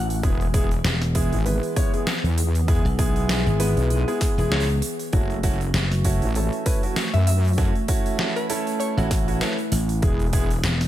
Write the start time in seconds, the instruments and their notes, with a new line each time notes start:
Already playing: slap bass A1, ambient pad E3 A3 F#4, synth pluck F#5
0.10 open hi-hat
0.23 wobble bass E1, grand piano G#3 B3 E4 G#4, ambient pad B3 G#4, kick, open hi-hat
0.41 open hi-hat
0.54 grand piano G#3 B3 E4 G#4, kick, open hi-hat
0.71 open hi-hat
0.84 slap bass E1, snare, open hi-hat
1.02 snare, open hi-hat
1.15 grand piano G#3 B3 E4 G#4, kick, open hi-hat
1.32 wobble bass G#1, open hi-hat
1.46 grand piano G#3 B3 E4 B4, open hi-hat
1.63 open hi-hat
1.76 grand piano G#3 B3 E4 C#5, kick, open hi-hat
1.94 grand piano G#3 B3 E4 G#4, open hi-hat
2.07 snare, open hi-hat
2.24 wobble bass E2, open hi-hat
2.38 open hi-hat
2.55 open hi-hat
2.68 grand piano G#3 B3 E4 G#4, kick, open hi-hat
2.85 slap bass B1, open hi-hat
2.99 grand piano G#3 B3 E4 G#4, kick, open hi-hat
3.16 open hi-hat
3.29 snare, open hi-hat
3.46 slap bass G#1, open hi-hat
3.60 grand piano G#3 B3 E4 B4, open hi-hat
3.77 wobble bass B1, open hi-hat
3.90 open hi-hat
4.08 grand piano G#3 B3 E4 G#4, open hi-hat
4.21 kick, snare, open hi-hat
4.38 slap bass E1, grand piano G#3 B3 E4 G#4, open hi-hat
4.52 slap bass C#2, grand piano G#3 B3 E4 C#5, snare
4.60 open hi-hat
4.69 open hi-hat
4.82 open hi-hat
4.99 open hi-hat
5.13 wobble bass F#1, ambient pad A3 F#4, grand piano A3 C#4 E4 F#4, kick, open hi-hat
5.30 open hi-hat
5.43 grand piano A3 C#4 E4 F#4, kick, open hi-hat
5.61 open hi-hat
5.74 slap bass F#1, snare, open hi-hat
5.92 snare, open hi-hat
6.05 grand piano A3 C#4 E4 F#4, kick, open hi-hat
6.22 wobble bass A1, open hi-hat
6.35 grand piano A3 C#4 E4 A4, open hi-hat
6.53 open hi-hat
6.66 grand piano A3 C#4 E4 B4, kick, open hi-hat
6.83 grand piano A3 C#4 E4 F#4, open hi-hat
6.96 snare, open hi-hat
7.14 wobble bass F#2, synth pluck E5, open hi-hat
7.27 synth pluck E5, open hi-hat
7.44 open hi-hat
7.47 open hi-hat
7.53 open hi-hat
7.58 grand piano A3 C#4 E4 F#4, ambient pad E4, kick, open hi-hat
7.75 open hi-hat
7.88 grand piano A3 C#4 E4 F#4, kick, open hi-hat
8.06 open hi-hat
8.19 snare
8.36 synth pluck B4, open hi-hat
8.50 grand piano A3 C#4 E4 A4, open hi-hat
8.67 open hi-hat
8.80 synth pluck C#5, open hi-hat
8.97 slap bass A1, grand piano A3 C#4 E4 F#4, open hi-hat
9.11 kick, snare, open hi-hat
9.28 grand piano A3 C#4 E4 F#4, open hi-hat
9.41 grand piano A3 C#4 E4 B4, snare, open hi-hat
9.58 open hi-hat
9.72 slap bass A1, open hi-hat
9.89 open hi-hat
10.02 wobble bass E1, ambient pad E3 B3 G#4, grand piano G#3 B3 E4 G#4, kick, open hi-hat
10.20 open hi-hat
10.22 open hi-hat
10.26 open hi-hat
10.28 open hi-hat
10.31 open hi-hat
10.33 grand piano G#3 B3 E4 G#4, kick, open hi-hat
10.50 open hi-hat
10.64 slap bass E1, snare, open hi-hat
10.81 snare, open hi-hat